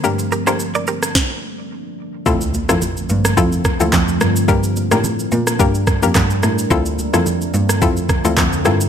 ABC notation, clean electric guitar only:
X:1
M:4/4
L:1/16
Q:"Swing 16ths" 1/4=108
K:Dm
V:1 name="Clean electric guitar"
z2 [GB] [Ac] z [Bd] [GB] z8 z | z16 | z16 | z16 |]